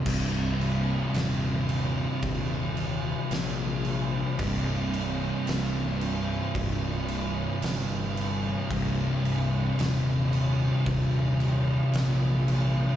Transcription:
<<
  \new Staff \with { instrumentName = "Distorted electric guitar" } { \clef bass \time 4/4 \key c \minor \tempo 4 = 56 <c, g, c>1 | <c, g, c>1 | <c, g, c>1 | }
  \new Staff \with { instrumentName = "Distorted electric guitar" } { \clef bass \time 4/4 \key c \minor <c, g, c>1 | <c, g, c>1 | <c, g, c>1 | }
  \new Staff \with { instrumentName = "Fingered electric bass" } { \clef bass \time 4/4 \key c \minor c,,8 c,,8 ees,,4 ees,,4 bes,,4 | c,,4 c,,4 c,,4 g,,4 | c,,8 c,,8 ees,,4 ees,,4 bes,,4 | }
  \new DrumStaff \with { instrumentName = "Drums" } \drummode { \time 4/4 <cymc bd>8 cymc8 <cymc sn>8 cymc8 <cymc bd>8 cymc8 <cymc sn>8 cymc8 | <cymc bd>8 cymc8 <cymc sn>8 cymc8 <cymc bd>8 cymc8 <cymc sn>8 cymc8 | <cymc bd>8 cymc8 <cymc sn>8 cymc8 <cymc bd>8 cymc8 <cymc sn>8 cymc8 | }
>>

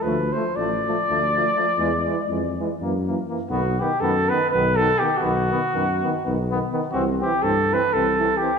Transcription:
<<
  \new Staff \with { instrumentName = "Cornet" } { \time 7/8 \tempo 4 = 122 b'8 c''8 d''2~ d''8~ | d''2~ d''8 r4 | fis'8 g'8 a'8 b'8 b'8 a'8 g'8 | fis'2. r8 |
fis'8 g'8 a'8 b'8 a'4 g'8 | }
  \new Staff \with { instrumentName = "Trombone" } { \time 7/8 a8 a8 a8 a8 a8 a8 a8 | gis8 gis8 gis8 gis8 ais8 ais8 ais8 | b8 b8 b8 b8 b8 b8 b8 | b8 b8 b8 b8 b8 b8 b8 |
c'8 c'8 c'8 c'8 c'8 c'8 c'8 | }
  \new Staff \with { instrumentName = "Euphonium" } { \clef bass \time 7/8 f8 f8 f8 f8 f8 f8 f8 | e8 e8 e8 e8 e8 e8 e8 | dis8 dis8 dis8 dis8 dis8 dis8 dis8 | dis8 dis8 dis8 dis8 dis8 dis8 dis8 |
e8 e8 e8 e8 e8 e8 e8 | }
  \new Staff \with { instrumentName = "Tuba" } { \clef bass \time 7/8 d,4 a,,4 d,4. | e,4 f,4 fis,4. | b,,4 fis,4 b,,4. | b,,4 fis,4 b,,4. |
c,4 g,4 c,4. | }
>>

